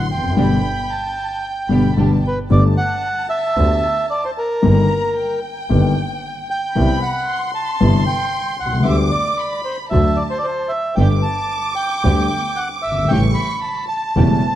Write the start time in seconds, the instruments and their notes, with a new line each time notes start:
Already playing: violin section C6
0.10 double bass F1, bandoneon G5
0.17 grand piano E2
0.23 grand piano F2
0.30 grand piano F#2
0.36 double bass G1, grand piano B2 D3 G3, string section B3 D4 G4, violin section B5
0.91 violin section A5
1.43 violin section G5
1.69 double bass G1, grand piano B2 D3 G3, string section B3 D4 G4, violin section B5
1.96 double bass G1, grand piano B2 D3 G3, string section B3 D4 G4, violin section A5
2.23 violin section G5
2.27 bandoneon B4
2.50 double bass G1, grand piano G1 G2 D3 A3 B3 G4, bandoneon D5, violin section A5
2.77 bandoneon F#5
3.30 bandoneon E5
3.56 grand piano D2 D3 A3 B3 G4, double bass D2
4.10 bandoneon D5
4.25 bandoneon C5
4.38 bandoneon A#4
4.62 grand piano G1 G2 D#3 G3 A#3 G4, double bass G1, violin section A#5
5.17 violin section G5
5.69 grand piano G1 G2 D#3 G3 A#3 G4, double bass G1
6.50 bandoneon G5
6.75 grand piano C2 C3 G3 B3 E4, double bass C2, violin section B5
7.02 bandoneon F#5
7.29 violin section C6
7.55 bandoneon A5
7.80 grand piano G1 G2 C3 G3 B3 E4, double bass G1
8.07 bandoneon G5
8.60 double bass C2, bandoneon F#5
8.66 grand piano B1
8.72 grand piano C2
8.80 grand piano C#2
8.84 grand piano D2 D3 G3 B3 G4, double bass D2, bandoneon E5, violin section D6
9.11 bandoneon D5
9.39 violin section B5
9.65 bandoneon C5
9.90 grand piano D2 D3 F#3 A3 F#4, double bass D2, bandoneon E5, violin section A5
10.16 bandoneon D5
10.30 bandoneon C5
10.39 bandoneon D5
10.44 bandoneon C5
10.69 bandoneon E5
10.95 grand piano G1 G2 D3 G3 B3 G4, double bass G1, string section B3 D4 G4, bandoneon G5, violin section D6
11.22 bandoneon A5
11.76 bandoneon G5
12.04 grand piano D2 D3 G3 B3 G4, double bass D2, string section B3 D4 G4
12.56 bandoneon F#5
12.82 double bass G1, bandoneon E5
12.91 grand piano F#1
12.98 grand piano G1
13.04 grand piano G#1
13.09 grand piano A1 A2 C#3 G3 A3 E4, double bass A1, string section A3 C#4 G4, bandoneon G5, violin section C#6
13.34 bandoneon B5
13.65 violin section A5
13.88 bandoneon A5
14.16 grand piano E1 E2 C#3 G3 A3 E4, double bass E1, string section A3 C#4 G4